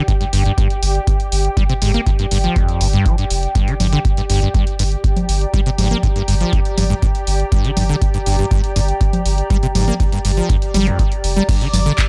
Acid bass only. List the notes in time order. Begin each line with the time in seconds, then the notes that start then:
0.08 G2
0.21 G2
0.33 G2
0.45 G2
0.58 G2
1.57 G3
1.69 C3
1.82 G#2
1.94 A#3
2.07 G#2
2.19 G2
2.31 G2
2.44 F3
2.56 F2
2.81 G2
2.93 G2
3.06 F3
3.18 G2
3.55 G2
3.68 D3
3.80 G2
3.93 D3
4.17 G2
4.30 G2
4.42 G2
4.55 G2
4.79 G2
5.54 G3
5.66 C3
5.78 G#2
5.91 A#3
6.03 G#2
6.16 G2
6.28 G2
6.41 F3
6.53 F2
6.78 G2
6.90 G2
7.02 G#2
7.52 G2
7.64 D3
7.77 G2
7.89 D3
8.14 G2
8.26 G2
8.39 G2
8.51 G2
8.76 G2
9.50 G3
9.63 C3
9.75 G#2
9.88 A#3
10.00 G#2
10.12 G2
10.25 G2
10.37 F3
10.49 F2
10.74 G3
10.87 F2
10.99 G3
11.36 G3
11.49 G2
11.61 D3
11.73 G2
11.86 D3